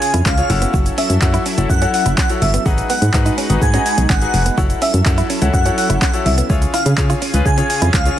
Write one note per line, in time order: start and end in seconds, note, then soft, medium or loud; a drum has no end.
0.00 0.48 C#3 medium
0.00 2.62 C#4 medium
0.00 0.16 F4 medium
0.00 0.48 F4 medium
0.00 0.16 G#4 medium
0.00 0.48 G#4 medium
0.00 0.16 C#5 medium
0.00 0.12 G#5 medium
0.00 muted clean electric guitar stroke soft
0.00 open hi-hat medium
0.00 shaker medium
0.14 0.22 F2 medium
0.14 0.22 E4 medium
0.14 closed hi-hat medium
0.14 shaker medium
0.25 0.42 C#2 loud
0.25 0.34 C#4 medium
0.25 0.60 F5 medium
0.25 kick loud
0.25 clap loud
0.25 shaker medium
0.38 0.50 F4 medium
0.38 0.50 G#4 medium
0.38 0.48 C#5 medium
0.38 closed hi-hat medium
0.38 shaker medium
0.50 0.66 F#1 loud
0.50 2.64 F#3 medium
0.50 1.07 E4 medium
0.50 2.64 E4 medium
0.50 1.07 F#4 medium
0.50 1.07 A4 medium
0.50 2.64 A4 loud
0.50 1.07 C#5 medium
0.50 1.07 F#5 medium
0.50 muted clean electric guitar stroke soft
0.50 open hi-hat medium
0.50 shaker medium
0.62 0.70 B3 medium
0.62 closed hi-hat medium
0.62 shaker medium
0.74 0.90 F#1 loud
0.74 0.82 F#4 medium
0.74 kick loud
0.74 shaker medium
0.86 muted clean electric guitar stroke soft
0.86 closed hi-hat medium
0.86 shaker medium
0.98 1.06 C#4 medium
0.98 1.08 E5 medium
0.98 open hi-hat loud
0.98 shaker medium
1.10 1.18 F#2 loud
1.10 closed hi-hat medium
1.10 shaker medium
1.21 1.38 F#2 loud
1.21 1.41 E4 medium
1.21 1.42 F#4 medium
1.21 1.42 A4 medium
1.21 1.42 C#5 medium
1.21 1.42 F#5 loud
1.21 muted clean electric guitar stroke soft
1.21 kick loud
1.21 clap loud
1.21 shaker medium
1.34 1.42 E4 medium
1.34 closed hi-hat medium
1.34 shaker medium
1.46 1.54 C#4 medium
1.46 open hi-hat medium
1.46 shaker medium
1.58 1.66 F#1 loud
1.58 1.71 E4 medium
1.58 1.71 F#4 medium
1.58 1.71 A4 medium
1.58 1.71 C#5 medium
1.58 1.71 F#5 medium
1.58 closed hi-hat medium
1.58 shaker medium
1.70 1.86 F#2 loud
1.70 1.91 F#5 medium
1.70 kick loud
1.70 shaker medium
1.82 1.90 C#4 medium
1.82 2.08 E4 medium
1.82 2.08 F#4 medium
1.82 2.08 A4 medium
1.82 2.08 C#5 medium
1.82 2.08 F#5 medium
1.82 closed hi-hat medium
1.82 shaker medium
1.82 shaker soft
1.94 2.04 F#5 medium
1.94 muted clean electric guitar stroke soft
1.94 open hi-hat medium
1.94 shaker medium
2.06 2.14 F#1 loud
2.06 2.14 E4 medium
2.06 closed hi-hat medium
2.06 shaker medium
2.18 2.26 C#4 medium
2.18 2.28 F#5 medium
2.18 kick loud
2.18 clap loud
2.18 shaker medium
2.29 2.49 E4 medium
2.29 2.50 F#4 medium
2.29 2.50 A4 medium
2.29 2.50 C#5 medium
2.29 2.50 F#5 medium
2.29 closed hi-hat medium
2.29 shaker medium
2.29 shaker soft
2.42 2.58 G1 loud
2.42 2.52 E5 medium
2.42 muted clean electric guitar stroke soft
2.42 open hi-hat medium
2.42 shaker medium
2.54 2.62 B3 medium
2.54 closed hi-hat medium
2.54 shaker medium
2.66 2.82 G#1 loud
2.66 4.56 G#3 medium
2.66 2.74 G#3 medium
2.66 2.92 D#4 medium
2.66 4.56 D#4 medium
2.66 2.92 F#4 medium
2.66 4.56 F#4 medium
2.66 2.92 G#4 medium
2.66 4.56 B4 medium
2.66 2.92 B4 medium
2.66 2.92 F#5 loud
2.66 kick loud
2.66 shaker medium
2.78 muted clean electric guitar stroke soft
2.78 closed hi-hat soft
2.78 shaker medium
2.90 2.98 B3 medium
2.90 3.00 F#5 medium
2.90 open hi-hat medium
2.90 shaker medium
2.90 shaker soft
3.02 3.10 G#2 loud
3.02 closed hi-hat medium
3.02 shaker medium
3.13 3.30 G#2 loud
3.13 3.33 D#4 medium
3.13 3.33 F#4 medium
3.13 3.34 G#4 medium
3.13 3.34 B4 medium
3.13 3.34 F#5 loud
3.13 muted clean electric guitar stroke soft
3.13 kick loud
3.13 clap loud
3.13 shaker medium
3.26 3.34 D#4 medium
3.26 closed hi-hat medium
3.26 shaker soft
3.26 shaker medium
3.38 3.46 C#4 medium
3.38 open hi-hat medium
3.38 shaker medium
3.49 3.58 G#1 loud
3.49 3.63 D#4 medium
3.49 3.63 F#4 medium
3.49 3.63 G#4 medium
3.49 3.63 B4 medium
3.49 3.63 F#5 medium
3.49 closed hi-hat medium
3.49 shaker medium
3.62 3.78 G#2 loud
3.62 3.83 G#5 medium
3.62 kick loud
3.62 shaker medium
3.73 3.82 C#4 medium
3.73 4.00 D#4 medium
3.73 4.00 F#4 medium
3.73 4.00 G#4 medium
3.73 4.00 B4 medium
3.73 4.00 F#5 medium
3.73 closed hi-hat medium
3.73 shaker medium
3.73 shaker soft
3.86 3.96 G#5 medium
3.86 muted clean electric guitar stroke soft
3.86 open hi-hat medium
3.86 shaker medium
3.86 shaker soft
3.98 4.06 B1 medium
3.98 4.06 D#4 medium
3.98 closed hi-hat medium
3.98 shaker medium
4.10 4.26 G#1 loud
4.10 4.18 C#4 medium
4.10 4.44 F#5 medium
4.10 kick loud
4.10 clap loud
4.10 shaker medium
4.21 4.42 D#4 medium
4.21 4.42 F#4 medium
4.21 4.42 G#4 medium
4.21 4.42 B4 medium
4.21 4.42 G#5 medium
4.21 closed hi-hat medium
4.21 shaker medium
4.21 shaker soft
4.34 4.50 F1 medium
4.34 muted clean electric guitar stroke soft
4.34 open hi-hat medium
4.34 shaker medium
4.46 4.54 B3 medium
4.46 closed hi-hat medium
4.46 shaker medium
4.57 4.74 F#1 loud
4.57 6.48 F#3 medium
4.57 6.48 C#4 medium
4.57 4.84 E4 loud
4.57 6.48 E4 medium
4.57 4.84 F#4 medium
4.57 4.66 F#4 medium
4.57 4.84 A4 medium
4.57 6.48 A4 medium
4.57 4.84 C#5 medium
4.57 4.84 F#5 loud
4.57 kick loud
4.57 shaker medium
4.70 muted clean electric guitar stroke soft
4.70 closed hi-hat soft
4.70 shaker medium
4.82 4.90 C#4 medium
4.82 4.92 E5 medium
4.82 open hi-hat medium
4.82 shaker medium
4.82 shaker soft
4.94 5.02 F#2 loud
4.94 closed hi-hat medium
4.94 shaker medium
5.05 5.22 F#2 loud
5.05 5.25 E4 medium
5.05 5.26 F#4 medium
5.05 5.26 A4 medium
5.05 5.26 C#5 medium
5.05 5.26 F#5 loud
5.05 muted clean electric guitar stroke soft
5.05 kick loud
5.05 clap loud
5.05 shaker medium
5.18 5.26 E4 medium
5.18 closed hi-hat medium
5.18 shaker soft
5.18 shaker medium
5.30 5.38 C#4 medium
5.30 open hi-hat medium
5.30 shaker medium
5.42 5.50 C#2 loud
5.42 5.55 E4 medium
5.42 5.55 F#4 medium
5.42 5.55 A4 medium
5.42 5.55 C#5 medium
5.42 5.55 F#5 medium
5.42 closed hi-hat medium
5.42 shaker medium
5.54 5.70 F#2 loud
5.54 5.75 F#5 medium
5.54 kick loud
5.54 shaker medium
5.65 5.74 C#4 medium
5.65 5.92 E4 medium
5.65 5.92 F#4 medium
5.65 5.92 A4 medium
5.65 5.92 C#5 medium
5.65 5.92 F#5 medium
5.65 closed hi-hat medium
5.65 shaker medium
5.65 shaker soft
5.78 5.88 F#5 medium
5.78 muted clean electric guitar stroke soft
5.78 open hi-hat medium
5.78 shaker medium
5.90 5.98 F#1 loud
5.90 5.98 E4 medium
5.90 closed hi-hat medium
5.90 shaker medium
6.02 6.10 C#4 medium
6.02 6.12 F#5 medium
6.02 kick loud
6.02 clap loud
6.02 shaker medium
6.13 6.33 E4 medium
6.13 6.34 F#4 medium
6.13 6.34 A4 medium
6.13 6.34 C#5 medium
6.13 6.34 F#5 medium
6.13 closed hi-hat medium
6.13 shaker medium
6.26 6.42 C2 loud
6.26 6.36 E5 medium
6.26 muted clean electric guitar stroke soft
6.26 open hi-hat medium
6.26 shaker medium
6.38 6.46 B3 medium
6.38 closed hi-hat medium
6.38 shaker medium
6.50 6.66 C#2 loud
6.50 8.19 C#3 medium
6.50 6.58 C#4 medium
6.50 8.19 C#4 medium
6.50 6.76 F4 medium
6.50 8.19 F4 medium
6.50 8.19 G#4 loud
6.50 6.76 G#4 medium
6.50 6.76 C#5 loud
6.50 kick loud
6.50 shaker medium
6.62 muted clean electric guitar stroke soft
6.62 closed hi-hat medium
6.62 shaker medium
6.74 6.82 E4 medium
6.74 6.84 F5 medium
6.74 open hi-hat medium
6.74 shaker medium
6.86 6.94 C#3 loud
6.86 closed hi-hat medium
6.86 shaker medium
6.98 7.14 C#3 loud
6.98 7.17 F4 medium
6.98 7.18 G#4 medium
6.98 7.18 C#5 loud
6.98 muted clean electric guitar stroke soft
6.98 kick loud
6.98 clap loud
6.98 shaker medium
7.10 7.18 F4 medium
7.10 closed hi-hat medium
7.10 shaker medium
7.22 7.30 C#4 medium
7.22 open hi-hat medium
7.22 shaker medium
7.34 7.42 C#2 medium
7.34 7.47 F4 medium
7.34 7.47 G#4 medium
7.34 7.47 B4 medium
7.34 closed hi-hat medium
7.34 shaker medium
7.46 7.62 C#3 loud
7.46 7.67 G#5 medium
7.46 kick loud
7.46 shaker medium
7.58 7.66 C#4 medium
7.58 7.84 F4 medium
7.58 7.84 G#4 medium
7.58 7.84 C#5 medium
7.58 closed hi-hat medium
7.58 shaker medium
7.58 shaker soft
7.70 7.80 G#5 medium
7.70 muted clean electric guitar stroke soft
7.70 open hi-hat medium
7.70 shaker medium
7.82 7.90 F2 medium
7.82 7.90 E4 medium
7.82 closed hi-hat medium
7.82 shaker medium
7.94 8.10 C#2 loud
7.94 8.02 C#4 medium
7.94 8.19 F5 medium
7.94 kick loud
7.94 clap loud
7.94 shaker medium
8.06 8.19 F4 medium
8.06 8.19 G#4 medium
8.06 8.19 C#5 medium
8.06 closed hi-hat medium
8.06 shaker medium
8.06 shaker soft